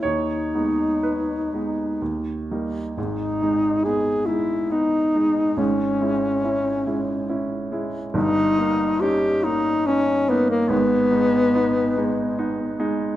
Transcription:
<<
  \new Staff \with { instrumentName = "Alto saxophone" } { \time 3/4 \key gis \minor \tempo 4 = 70 dis'2~ dis'8 r8 | dis'4 gis'8 e'8 dis'4 | cis'2~ cis'8 r8 | dis'4 g'8 dis'8 cis'8 b16 ais16 |
b2~ b8 r8 | }
  \new Staff \with { instrumentName = "Grand piano" } { \time 3/4 \key gis \minor cis''4 b'4 r4 | r2. | r2. | r2. |
r2. | }
  \new Staff \with { instrumentName = "Grand piano" } { \time 3/4 \key gis \minor dis,8 <gis b dis'>4 <gis b dis'>8 dis,8 <g ais dis'>8 | <gis,, gis,>8 <gis dis'>8 <b dis'>8 <gis dis'>8 <b dis'>8 <gis dis'>8 | <gis,, gis,>8 <gis e'>8 <cis' e'>8 <gis e'>8 <cis' e'>8 <gis e'>8 | <g,, g,>8 <ais dis'>8 <cis' dis'>8 <ais dis'>8 <cis' dis'>8 <ais dis'>8 |
<gis,, gis,>8 <gis dis'>8 <b dis'>8 <gis dis'>8 <b dis'>8 <gis dis'>8 | }
>>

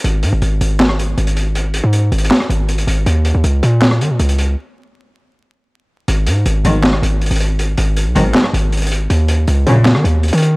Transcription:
<<
  \new Staff \with { instrumentName = "String section" } { \clef bass \time 4/4 \key gis \minor \tempo 4 = 159 r1 | r1 | r1 | r1 |
r4. <b,, gis, dis>8 r2 | r4. <b,, gis, dis>8 r2 | r4. <ais,, fis, cis>8 r2 | }
  \new Staff \with { instrumentName = "808-style bass" } { \clef bass \time 4/4 \key gis \minor gis,,8 gis,16 gis,,16 gis,,8 gis,,4. gis,,4~ | gis,,8. gis,8. gis,,8 r8 gis,,4 gis,,8 | dis,8. dis,16 cis,8 ais,4 dis16 ais,16 cis,4 | r1 |
gis,,8 gis,8 gis,,8 gis,,4 gis,,8. gis,,8.~ | gis,,8 gis,,8. b,,16 gis,,8 r8 gis,,4. | dis,4 cis,8 ais,8. dis16 dis,8. dis8. | }
  \new DrumStaff \with { instrumentName = "Drums" } \drummode { \time 4/4 hh8 hh8 hh8 hh8 <hc sn>16 ss16 hh8 hh16 hh16 hh8 | hh8 hh8 \tuplet 3/2 { hh16 r16 r16 hh16 hh16 hh16 } <hc sn>16 ss16 hh8 hh16 hh16 hh8 | hh8 hh8 hh8 hh8 <hc sn>16 ss16 hh8 hh16 hh16 hh8 | r4 r4 r4 r4 |
hh8 hh8 hh8 hh8 <hc sn>16 ss16 hh8 hh32 hh32 hh32 hh32 hh8 | hh8 hh8 hh8 hh8 <hc sn>16 ss16 hh8 hh32 hh32 hh32 hh32 hh8 | hh8 hh8 hh8 hh8 <hc sn>16 ss16 hh8 hh32 hh32 hh32 hh32 hh8 | }
>>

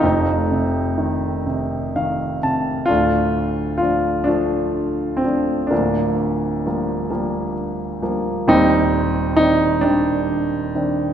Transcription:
<<
  \new Staff \with { instrumentName = "Grand piano" } { \time 6/8 \key f \mixolydian \tempo 4. = 43 ees'2~ ees'8 r8 | \key d \phrygian f'4 f'8 d'4 c'8 | d'2 r4 | ees'4 ees'8 d'4. | }
  \new Staff \with { instrumentName = "Grand piano" } { \clef bass \time 6/8 \key f \mixolydian << { <f,, f,>8 c8 ees8 c8 <ees f''>8 <c a''>8 | \key d \phrygian <d,, d,>4 <f a d'>8 d'4 <f a d'>8 | <d,, d,>4 <f g bes>8 <f g bes>4 <f g bes>8 | <ees,, ees,>4 <ees c' d''>8 <ees c' d'>4 <ees c' d'>8 | } \\ { <a c'>2~ <a c'>8 r8 | <a d'>4. <f a>4. | <f bes>2 r4 | <g c'>4. g4. | } >> }
>>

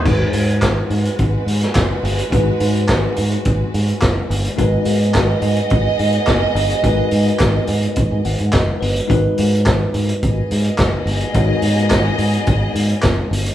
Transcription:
<<
  \new Staff \with { instrumentName = "Violin section" } { \time 4/4 \key gis \minor \tempo 4 = 106 <gis fis' b'>1~ | <gis fis' b'>1 | <b gis' dis''>1~ | <b gis' dis''>1 |
r2 <b gis' dis''>2~ | <b gis' dis''>1 | }
  \new Staff \with { instrumentName = "Tine electric piano" } { \time 4/4 \key gis \minor << { r1 | r1 | r1 | r2 r8 fis''8 dis''8 b'8 |
r1 | r1 | } \\ { <gis dis' fis' gis' b'>1 | <gis dis' fis' gis' b'>1 | <gis dis' fis' ais' b'>1 | <gis dis' fis' ais' b'>1 |
<gis dis' fis' ais' b'>1 | <gis dis' fis' ais' cis''>1 | } >> }
  \new Staff \with { instrumentName = "Horn section" } { \time 4/4 \key gis \minor <gis b fis' b'>16 r2. r8. | r1 | r1 | r1 |
r1 | r1 | }
  \new Staff \with { instrumentName = "Fingered electric bass" } { \clef bass \time 4/4 \key gis \minor gis,,8 gis,8 gis,,8 gis,8 gis,,8 gis,8 fis,,8 g,,8 | gis,,8 gis,8 gis,,8 gis,8 gis,,8 gis,8 fis,,8 g,,8 | gis,,8 gis,8 gis,,8 gis,8 gis,,8 gis,8 fis,,8 g,,8 | gis,,8 gis,8 gis,,8 gis,8 gis,,16 gis,16 gis,,16 gis,16 fis,,8 g,,8 |
gis,,8 gis,8 gis,,8 gis,8 gis,,8 gis,8 fis,,8 g,,8 | gis,,8 gis,8 gis,,8 gis,8 gis,,8 gis,8 fis,,8 g,,8 | }
  \new DrumStaff \with { instrumentName = "Drums" } \drummode { \time 4/4 <cymc bd>8 hho16 hh16 <hc hh bd sn>8 hho16 hh16 <hh bd>8 hho16 <hh sn>16 <hc hh bd sn>8 hho16 hh16 | <hh bd>8 hho16 hh16 <hc hh bd sn>8 hho16 hh16 <hh bd>8 hho16 hh16 <hc hh bd sn>8 hho16 hh16 | <hh bd>8 hho16 hh16 <hc hh bd sn>8 hho16 hh16 <hh bd>8 hho16 hh16 <hc hh bd sn>8 hho16 hh16 | <hh bd>8 hho16 hh16 <hc hh bd sn>8 hho16 hh16 <hh bd>8 hho16 hh16 <hc hh bd sn>8 hho16 hh16 |
<hh bd>8 hho16 hh16 <hc hh bd sn>8 hho16 hh16 <hh bd>8 hho16 hh16 <hc hh bd sn>8 hho16 hh16 | <hh bd>8 hho16 hh16 <hc hh bd sn>8 hho16 hh16 <hh bd>8 hho16 hh16 <hc hh bd sn>8 hho16 hh16 | }
>>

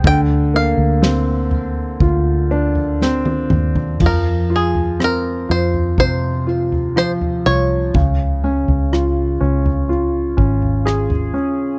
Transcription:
<<
  \new Staff \with { instrumentName = "Five-string banjo" } { \time 4/4 \key f \minor \tempo 4 = 61 g''8 f''2. r8 | bes'8 aes'8 bes'8 c''8 c''4 c''8 des''8~ | des''4. r2 r8 | }
  \new Staff \with { instrumentName = "Grand piano" } { \time 4/4 \key f \minor d8 bes8 c'4 f'8 d'8 c'4 | f8 f'8 c'8 f'8 c8 f'8 f8 f'8 | des8 des'8 f'8 des'8 f'8 des'8 aes'8 des'8 | }
  \new Staff \with { instrumentName = "Fingered electric bass" } { \clef bass \time 4/4 \key f \minor d,8. d,4~ d,16 d,4. ees,8 | f,4. f,2 c,8 | des,8. des,8. des,4 aes,,4 r8 | }
  \new DrumStaff \with { instrumentName = "Drums" } \drummode { \time 4/4 <bd tomfh>4 sn8 tomfh8 <bd tomfh>8. tomfh16 sn16 tommh16 toml16 tomfh16 | <cymc bd tomfh>8. tomfh16 ss8. tomfh16 bd8. tomfh16 ss16 tomfh8. | <bd tomfh>8. tomfh16 ss8. tomfh16 r8 bd16 tomfh16 ss16 tomfh8. | }
>>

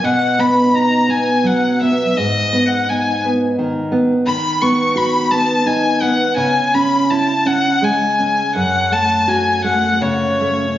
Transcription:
<<
  \new Staff \with { instrumentName = "Violin" } { \time 3/4 \key gis \minor \tempo 4 = 83 fis''8 b''8 ais''8 gis''8 fis''8 e''8 | \tuplet 3/2 { dis''4 fis''8 } gis''8 r4. | \key fis \dorian b''8 cis'''8 b''8 a''8 gis''8 fis''8 | gis''8 b''8 a''8 fis''8 gis''4 |
fis''8 a''8 gis''8 fis''8 cis''4 | }
  \new Staff \with { instrumentName = "Nylon-string guitar" } { \time 3/4 \key gis \minor b,8 b8 dis'8 b8 fis8 b8 | gis,8 b8 dis'8 b8 dis8 b8 | \key fis \dorian dis8 b8 fis'8 b8 dis'8 b8 | cis8 cis'8 e'8 cis'8 gis8 cis'8 |
fis,8 a8 fis'8 a8 cis8 a8 | }
>>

